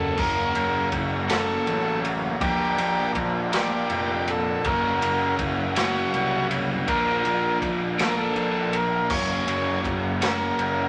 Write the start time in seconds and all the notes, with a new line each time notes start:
Already playing: F#2 C#3 F#3 A#3 C#4 F#4 A4 C#5 F#5 C#6
0.16 F#1 F#2 C#3 F#3 A#3 C#4 F#4 A#4 C#5 F#5 C#6, kick, crash
0.54 F#1, ride
0.92 F#1, kick, ride
1.28 F#2 C#3 F#3 A#3 C#4 F#4 A4, snare, ride
1.67 A1, ride
2.05 ride
2.41 A#1 A#2 F3 A#3 D4 F4 G4 A#4 D5 F5 D6, kick, ride
2.78 A#1, ride
3.15 A#1, kick, ride
3.53 A#2 F3 A#3 D4 F4 G4 A#4, snare, ride
3.90 F1, ride
4.28 A4, ride
4.64 F#1 F#2 C#3 F#3 A#3 C#4 F#4 A#4 C#5 F#5 C#6, kick, ride
5.01 F#1, ride
5.39 F#1, kick, ride
5.76 F#2 C#3 F#3 A#3 C#4 F#4, snare, ride
6.14 C2, ride
6.51 ride
6.87 A#1 A#2 F3 A#3 D4 F4 A#4 D5 F5 D6, kick, ride
7.25 A#1, ride
7.62 A#1, kick, ride
7.99 A#2 F3 A#3 D4 F4 A#4, snare, ride
8.03 A4
8.09 A#4
8.18 A4
8.35 A#1, ride
8.73 A#4, ride
9.10 F#1 F#2 C#3 F#3 A#3 C#4 F#4 C#5 F#5 A#5, kick, crash
9.47 F#1, ride
9.84 F#1, kick, ride
10.21 F#2 C#3 F#3 A#3 C#4 F#4 A#4, snare, ride
10.58 F#1, ride